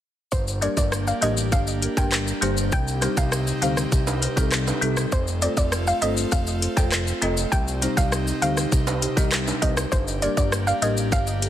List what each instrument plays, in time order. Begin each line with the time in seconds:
0.32 analog synth bass G1, analog synth pad A#3 D4 G4, synth pluck C5, kick, maracas, shaker
0.47 shaker, maracas
0.61 marimba G3 A#3 D4 G4 A#4, synth pluck D5, closed hi-hat, maracas, shaker
0.77 analog synth bass G1, synth pluck D5, kick, shaker, maracas
0.92 cross-stick, shaker, maracas
1.07 synth pluck F5, maracas, shaker
1.22 analog synth bass A1, marimba G3 A#3 D4 G4 A#4, synth pluck D#5, closed hi-hat, shaker, maracas
1.37 shaker, maracas
1.52 analog synth bass G1, synth pluck F5, kick, shaker, maracas
1.67 maracas, shaker
1.81 marimba G4 A#4, closed hi-hat, shaker
1.97 analog synth bass G1, marimba G3 A#3 D4 G4 A#4, synth pluck G5, kick, shaker, maracas
2.12 cross-stick, clap, maracas, shaker
2.27 shaker, maracas
2.41 analog synth bass G1, marimba G3 A#3 D4 G4 C5, closed hi-hat, shaker
2.57 shaker, maracas
2.72 analog synth bass C2, analog synth pad C3 C4 D#4, synth pluck G5, kick, maracas, shaker
2.87 shaker, maracas
3.02 marimba G3 C4 D#4 G4 C5, cross-stick, closed hi-hat, maracas, shaker
3.17 analog synth bass C2, synth pluck F5, kick, maracas, shaker
3.32 cross-stick, shaker, maracas
3.47 maracas, shaker
3.62 analog synth bass D2, marimba G3 C4 D#4 G4 C5, synth pluck F5, closed hi-hat, shaker, maracas
3.77 cross-stick, shaker, maracas
3.92 analog synth bass C2, kick, shaker, maracas
4.07 high timbale, maracas, shaker
4.22 marimba G4 C5, closed hi-hat, shaker
4.37 analog synth bass C2, marimba G3 C4 D#4 G4 A4, kick, shaker, maracas
4.52 cross-stick, clap, maracas, shaker
4.67 high timbale, shaker, maracas
4.81 analog synth bass C2, marimba G3 C4 D#4 G4 A4, closed hi-hat, shaker
4.97 cross-stick, shaker, maracas
5.12 analog synth bass F1, analog synth pad A3 F4, synth pluck C5, kick, maracas, shaker
5.27 shaker, maracas
5.42 marimba A3 C4 F4 A4 C5, synth pluck D5, closed hi-hat, maracas, shaker
5.57 analog synth bass F1, synth pluck D5, kick, maracas, shaker
5.72 cross-stick, shaker, maracas
5.87 synth pluck F5, maracas, shaker
6.02 analog synth bass G1, marimba A3 C4 F4 A4 C5, synth pluck D#5, closed hi-hat, shaker, maracas
6.17 shaker, maracas
6.32 analog synth bass F1, synth pluck F5, kick, shaker, maracas
6.47 maracas, shaker
6.62 marimba A4 C5, closed hi-hat, shaker
6.77 analog synth bass F1, marimba A3 C4 F4 A4 C5, synth pluck G5, kick, shaker, maracas
6.92 cross-stick, clap, shaker, maracas
7.07 shaker, maracas
7.22 analog synth bass F1, marimba A3 C4 F4 A4 D#5, closed hi-hat, shaker
7.37 maracas, shaker
7.52 analog synth bass C2, analog synth pad C3 D#4 G4, synth pluck G5, kick, maracas, shaker
7.68 shaker, maracas
7.82 marimba G3 C4 D#4 G4 C5, closed hi-hat, maracas, shaker
7.97 analog synth bass C2, synth pluck F5, kick, shaker, maracas
8.12 cross-stick, shaker, maracas
8.27 maracas, shaker
8.42 analog synth bass D2, marimba G3 C4 D#4 G4 C5, synth pluck F5, closed hi-hat, shaker, maracas
8.57 cross-stick, shaker, maracas
8.72 analog synth bass C2, kick, shaker, maracas
8.87 high timbale, maracas, shaker
9.02 marimba G4 C5, closed hi-hat, shaker, maracas
9.17 analog synth bass C2, marimba G3 C4 D#4 G4 D#5, kick, shaker, maracas
9.32 cross-stick, clap, shaker, maracas
9.47 high timbale, shaker, maracas
9.62 analog synth bass C2, marimba G3 C4 D#4 G4 C5, synth pluck D#5, kick, closed hi-hat, shaker, maracas
9.77 cross-stick, shaker, maracas
9.92 analog synth bass G1, analog synth pad A#3 D4, synth pluck C5, kick, maracas, shaker
10.07 shaker, maracas
10.22 marimba G3 A#3 D4 G4 A#4, synth pluck D5, closed hi-hat, maracas, shaker
10.37 analog synth bass G1, synth pluck D5, kick, maracas, shaker
10.52 cross-stick, shaker, maracas
10.67 synth pluck F5, maracas, shaker
10.82 analog synth bass A1, marimba G3 A#3 D4 G4 A#4, synth pluck D#5, closed hi-hat, shaker, maracas
10.97 shaker, maracas
11.12 analog synth bass G1, synth pluck F5, kick, shaker, maracas
11.27 maracas, shaker
11.42 marimba G4 A4, closed hi-hat, shaker